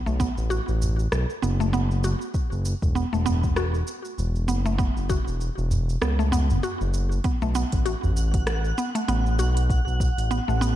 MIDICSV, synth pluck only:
0, 0, Header, 1, 2, 480
1, 0, Start_track
1, 0, Tempo, 612245
1, 1840, Time_signature, 4, 2, 24, 8
1, 8434, End_track
2, 0, Start_track
2, 0, Title_t, "Synth pluck"
2, 0, Program_c, 0, 84
2, 50, Note_on_c, 0, 57, 73
2, 151, Note_off_c, 0, 57, 0
2, 155, Note_on_c, 0, 59, 93
2, 288, Note_off_c, 0, 59, 0
2, 393, Note_on_c, 0, 66, 83
2, 866, Note_off_c, 0, 66, 0
2, 1116, Note_on_c, 0, 59, 75
2, 1241, Note_off_c, 0, 59, 0
2, 1256, Note_on_c, 0, 57, 75
2, 1355, Note_off_c, 0, 57, 0
2, 1357, Note_on_c, 0, 59, 95
2, 1489, Note_off_c, 0, 59, 0
2, 1600, Note_on_c, 0, 66, 72
2, 1840, Note_off_c, 0, 66, 0
2, 2315, Note_on_c, 0, 59, 84
2, 2441, Note_off_c, 0, 59, 0
2, 2452, Note_on_c, 0, 57, 66
2, 2553, Note_off_c, 0, 57, 0
2, 2553, Note_on_c, 0, 59, 97
2, 2687, Note_off_c, 0, 59, 0
2, 2795, Note_on_c, 0, 66, 85
2, 3267, Note_off_c, 0, 66, 0
2, 3512, Note_on_c, 0, 59, 75
2, 3639, Note_off_c, 0, 59, 0
2, 3650, Note_on_c, 0, 57, 80
2, 3751, Note_on_c, 0, 59, 97
2, 3752, Note_off_c, 0, 57, 0
2, 3886, Note_off_c, 0, 59, 0
2, 3995, Note_on_c, 0, 66, 77
2, 4467, Note_off_c, 0, 66, 0
2, 4716, Note_on_c, 0, 59, 82
2, 4841, Note_off_c, 0, 59, 0
2, 4853, Note_on_c, 0, 57, 76
2, 4953, Note_off_c, 0, 57, 0
2, 4955, Note_on_c, 0, 59, 103
2, 5088, Note_off_c, 0, 59, 0
2, 5200, Note_on_c, 0, 66, 80
2, 5670, Note_off_c, 0, 66, 0
2, 5678, Note_on_c, 0, 59, 80
2, 5802, Note_off_c, 0, 59, 0
2, 5818, Note_on_c, 0, 57, 75
2, 5916, Note_off_c, 0, 57, 0
2, 5920, Note_on_c, 0, 59, 94
2, 6050, Note_off_c, 0, 59, 0
2, 6158, Note_on_c, 0, 66, 84
2, 6629, Note_off_c, 0, 66, 0
2, 6883, Note_on_c, 0, 59, 79
2, 7004, Note_off_c, 0, 59, 0
2, 7017, Note_on_c, 0, 57, 80
2, 7115, Note_off_c, 0, 57, 0
2, 7122, Note_on_c, 0, 59, 99
2, 7251, Note_off_c, 0, 59, 0
2, 7362, Note_on_c, 0, 66, 72
2, 7831, Note_off_c, 0, 66, 0
2, 8081, Note_on_c, 0, 59, 85
2, 8204, Note_off_c, 0, 59, 0
2, 8217, Note_on_c, 0, 57, 68
2, 8315, Note_off_c, 0, 57, 0
2, 8320, Note_on_c, 0, 59, 103
2, 8434, Note_off_c, 0, 59, 0
2, 8434, End_track
0, 0, End_of_file